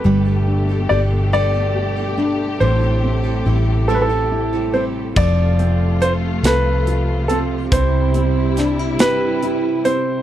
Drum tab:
CC |------|------|x-----|------|
HH |------|------|-xxxxx|xxxxxx|
SD |------|------|---o--|--oo--|
BD |------|------|o-----|o-----|